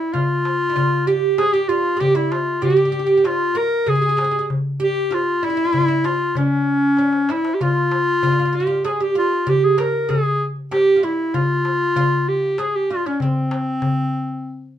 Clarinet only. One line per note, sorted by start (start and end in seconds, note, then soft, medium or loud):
0.00 0.15 E4 medium
0.13 1.08 F4 medium
1.07 1.39 G4 medium
1.38 1.54 G#4 medium
1.53 1.70 G4 medium
1.68 2.01 F4 medium
2.00 2.17 G4 medium
2.16 2.33 E4 medium
2.32 2.63 F4 medium
2.63 3.27 G4 medium
3.26 3.59 F4 medium
3.57 3.90 A#4 loud
3.89 4.54 G#4 medium
4.83 5.15 G4 medium
5.14 5.46 F4 medium
5.44 6.07 E4 loud
6.06 6.36 F4 medium
6.38 7.33 C#4 medium
7.31 7.56 E4 medium
7.54 7.64 G4 medium
7.62 8.57 F4 loud
8.55 8.84 G4 medium
8.85 9.04 G#4 medium
9.02 9.17 G4 medium
9.18 9.51 F4 medium
9.49 9.66 G4 medium
9.64 9.79 G#4 medium
9.80 10.12 A#4 medium
10.10 10.45 G#4 medium
10.73 11.06 G4 medium
11.04 11.36 E4 medium
11.35 12.30 F4 medium
12.28 12.60 G4 medium
12.59 12.77 G#4 medium
12.75 12.92 G4 medium
12.91 13.08 F4 medium
13.07 13.22 C#4 medium
13.21 14.76 C4 medium